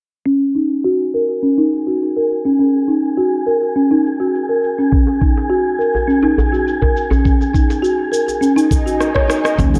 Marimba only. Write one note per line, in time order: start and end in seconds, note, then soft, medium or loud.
0.26 0.41 C#4 medium
0.55 0.83 D#4 medium
0.84 1.12 F#4 medium
1.14 1.23 A#4 medium
1.43 1.57 C#4 medium
1.58 1.66 D#4 medium
1.87 2.15 F#4 medium
2.16 2.24 A#4 medium
2.45 2.58 C#4 medium
2.59 2.74 C#4 medium
2.88 3.16 D#4 medium
3.17 3.45 F#4 medium
3.46 3.55 A#4 medium
3.76 3.90 C#4 medium
3.91 3.99 D#4 medium
4.20 4.48 F#4 medium
4.49 4.57 A#4 medium
4.78 4.91 C#4 medium
4.92 5.07 C#4 medium
5.21 5.49 D#4 medium
5.50 5.78 F#4 medium
5.79 5.88 A#4 medium
6.08 6.23 C#4 medium
6.23 6.31 D#4 medium
6.52 6.81 F#4 medium
6.82 6.90 A#4 medium
7.11 7.23 C#4 medium
7.25 7.40 C#4 medium
7.54 7.82 D#4 medium
7.82 8.11 F#4 medium
8.12 8.21 A#4 medium
8.41 8.56 C#4 medium
8.56 8.65 D#4 medium
8.86 8.99 F#4 medium
9.15 9.28 C#5 medium
9.28 9.43 D#4 medium
9.44 9.57 D#5 medium
9.57 9.73 C#4 medium